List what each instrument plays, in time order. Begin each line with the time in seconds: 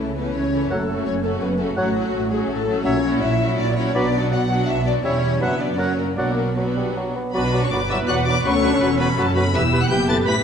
Already playing: double bass section C#2, viola section E3 A3, french horn section A3, violin section C#4 E4 A4
0.00 cello section C#3
0.16 viola section E3 A3, french horn section B3, violin section C#4 E4 B4, flute section B4
0.34 double bass section C#2, cello section C#3, french horn section C#4, violin section C#5, flute section C#5
0.52 viola section E3 A3, violin section C#4 E4
0.69 double bass section F#1, cello section F#2, bassoon F#3, french horn section A3, violin section A4, flute section A4, clarinet C#5, oboe F#5
0.88 viola section C#3 A3, violin section C#4 F#4
1.05 double bass section F#1, cello section F#2, french horn section C#4, violin section C#5, flute section C#5
1.23 viola section C#3 A3, french horn section A3, violin section C#4 F#4 A4, flute section A4
1.40 double bass section F#1, cello section F#2, french horn section B3, violin section B4, flute section B4
1.58 viola section C#3 A3, french horn section A3, violin section C#4 F#4 A4
1.62 flute section A4
1.75 double bass section A1, cello section A2, french horn section F#3, viola section F#3 A3, bassoon F#3, violin section F#4, clarinet C#5, oboe F#5
1.79 violin section C#4, flute section F#4
1.96 viola section F#3 A3, violin section C#4 F#4
2.13 double bass section A1, cello section A2
2.30 viola section F#3 A3, french horn section G#3, violin section C#4 F#4 G#4, flute section G#4
2.49 double bass section A1, cello section A2, french horn section A3, violin section A4, flute section A4
2.67 viola section F#3 A3, violin section C#4 F#4
2.84 double bass section A#1, cello section A#2, bassoon F#3, french horn section C#4, violin section C#5, clarinet C#5, flute section C#5, oboe E5
3.03 viola section F#3 C#4, violin section E4 F#4
3.21 double bass section A#1, cello section A#2, french horn section E4, violin section E5, flute section E5
3.40 viola section F#3 C#4, violin section E4 F#4
3.57 double bass section A#1, cello section A#2, french horn section D4, violin section D5, flute section D5
3.75 viola section F#3 C#4, french horn section C#4, violin section E4 F#4 C#5, flute section C#5
3.94 double bass section B1, cello section B2, bassoon F#3, viola section F#3 B3, french horn section D4, violin section D4 F#4 D5, clarinet B4, oboe D5, flute section D5
4.14 viola section F#3 B3, violin section D4 F#4
4.31 double bass section B1, cello section B2, french horn section F#4, violin section F#5, flute section F#5
4.49 viola section F#3 B3, violin section D4 F#4
4.67 double bass section B1, cello section B2, french horn section E4, flute section E5, violin section E5
4.85 viola section F#3 B3, violin section D4 F#4 D5, french horn section D4, flute section D5
5.03 double bass section E1, cello section E2, bassoon G3, viola section G3 C#4, french horn section C#4, violin section E4 C#5, clarinet C#5, flute section C#5, oboe E5
5.40 double bass section F#1, cello section F#2, bassoon F#3, viola section F#3 B3, violin section B3 D4 E5, french horn section E4, clarinet B4, flute section E5, oboe F#5
5.60 french horn section D4, violin section D5, flute section D5
5.78 bassoon F#3, viola section F#3 A#3, french horn section C#4, violin section C#4 F#4 C#5, clarinet A#4, flute section C#5, oboe F#5
5.98 french horn section A#3, flute section A#4, violin section A#4
6.15 double bass section B1, cello section B2, viola section F#3 B3, bassoon F#3, french horn section A#3, violin section D4 F#4 A#4, flute section A#4, clarinet D5, oboe F#5
6.56 viola section F#3 B3, bassoon F#3, french horn section B3, violin section D4 F#4 B4, flute section B4
6.76 bassoon G3
6.97 bassoon F#3
7.16 bassoon B3
7.33 double bass section B1, cello section B2, bassoon F#3, french horn section B3, viola section D4 F#4, clarinet F#4, violin section B4 B5, oboe D5, flute section B5
7.52 bassoon F#3, clarinet F#4, oboe D5, flute section B5
7.61 french horn section C#4, violin section C#5 C#6
7.70 double bass section G1, cello section G2, bassoon F#3, viola section B3 B4, french horn section D4, clarinet F#4, oboe D5, violin section D5 D6, flute section B5
7.89 bassoon F#3, french horn section E4, clarinet F#4, oboe D5, violin section E5 E6, flute section B5
8.07 double bass section E1, cello section E2, bassoon F#3, clarinet F#4, french horn section F#4, oboe D5, violin section F#5 F#6, flute section B5
8.26 bassoon F#3, french horn section D4, clarinet F#4, oboe D5, violin section D5 D6, flute section B5
8.45 double bass section D2, cello section D2, bassoon F#3, viola section B3 A4, french horn section C#4, clarinet F#4, oboe B4, violin section C#5 C#6, flute section B5
8.62 bassoon F#3, viola section D4, clarinet F#4, oboe B4, flute section B5
8.80 double bass section E1, cello section E2, bassoon F#3, viola section C#4, clarinet F#4, oboe B4, flute section B5
8.99 bassoon F#3, french horn section B3, clarinet F#4, violin section B4 B5, oboe B4, flute section B5
9.17 double bass section F#1, cello section F#2, bassoon F#3, french horn section A3, clarinet F#4, violin section A4 A5, oboe B4, flute section B5
9.35 bassoon F#3, french horn section B3, clarinet F#4, violin section B4 B5, oboe B4, flute section B5
9.54 double bass section E1, cello section E2, bassoon E3, viola section B3 G4, french horn section E4, clarinet G4, oboe B4, violin section E5 E6, flute section B5
9.72 bassoon E3, clarinet G4, oboe B4, flute section B5
9.81 french horn section F#4, violin section F#5 F#6
9.89 double bass section F#1, cello section F#2, bassoon E3, clarinet G4, french horn section G4, oboe B4, violin section G5 G6, flute section B5
10.07 bassoon E3, clarinet G4, french horn section A4, oboe B4, violin section A5 A6, flute section B5
10.25 double bass section A1, cello section A2, bassoon E3, clarinet G4, french horn section B4, oboe B4, violin section B5 B6, flute section B5